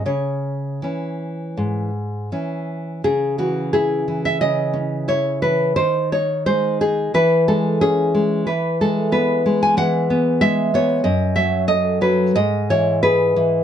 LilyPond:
\new Staff \with { instrumentName = "Nylon-string guitar" } { \time 4/4 \key cis \minor \tempo 4 = 90 << { cis''2. r4 | gis'8 fis'8 gis'8. e''16 dis''4 cis''8 b'8 | bis'8 cis''8 bis'8 gis'8 b'8 a'8 gis'4 | b'8 a'8 b'8. gis''16 fis''4 e''8 cis''8 |
dis''8 e''8 dis''8 b'8 dis''8 cis''8 b'4 | } \\ { cis4 <e cis'>4 gis,4 <e cis'>4 | cis8 e8 e'8 e8 cis8 cis'8 e'8 e8 | dis8 dis'8 gis8 dis'8 e8 gis8 cis'8 gis8 | e8 gis8 b8 gis8 e8 b8 gis8 b8 |
fis,8 fis8 a'8 fis8 gis,8 e8 gis'8 e8 | } >> }